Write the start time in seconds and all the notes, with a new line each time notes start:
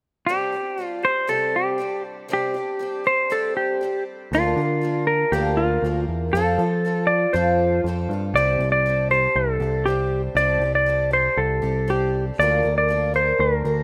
0.27 C3 G3 C4 D4 G4
0.52 D4 G4
0.78 G3 C4 D4 G4
0.84 F4
1.03 C4 D4 G4 C5
1.27 C3 G3 C4 D4 G4 A4
1.56 G4
1.78 G3 C4 D4 G4
2.28 C3 G3 C4 D4 G4
2.33 G4
2.54 C4 D4 G4
2.79 G3 C4 D4 G4
3.04 C4 D4 G4 C5
3.30 C3 G3 C4 D4 G4 A4
3.57 G4
3.81 G3 C4 D4 G4
4.32 D2 D3 F3 A#3 D4 F4 A#4
4.56 D3 A#4
4.60 A#3 D4
4.81 F3 A#3 D4 A#4
5.07 A#4
5.32 D2 D3 F3 A#3 D4 G4 A#4
5.57 F4
5.82 D2 F3 A#3 D4
5.87 A#4
6.08 E2
6.33 F2 F3 C4 F4 A4
6.58 F3 F4 A4
6.62 C4
6.85 F3 C4 F4 A4
7.07 D5
7.33 F2 F3 C4 F4 A4 C5
7.84 F2 F3 C4
7.88 F4 A4
8.09 G2 F4 A4
8.14 C4
8.34 C2 C3 G3 C4 G4 D5
8.38 D4
8.59 C2 D4 G4
8.64 C4
8.72 D5
8.86 G3 C4 D4 G4
9.11 D4 G4 C5
9.15 C4
9.35 C2 A4
9.60 C2 C4 D4 G4
9.86 G3 C4 D4 G4
9.90 G4
10.35 C2 C3 G3 C4 D4 G4 D5
10.59 C2 G4
10.63 C4 D4
10.75 D5
10.86 G3 C4 D4 G4
11.11 C4 D4 G4 C5
11.37 C2 A4
11.62 C2 C4 D4 G4
11.88 G3 C4 D4 G4
12.39 D2 D3 F3 A#3 D4 A#4 D5
12.63 D2 A#3 D4 A#4
12.78 D5
12.88 F3 A#3 D4 A#4
13.14 A#3 D4 A#4 C5
13.39 D2 A#4
13.65 D2 A#3 D4 A#4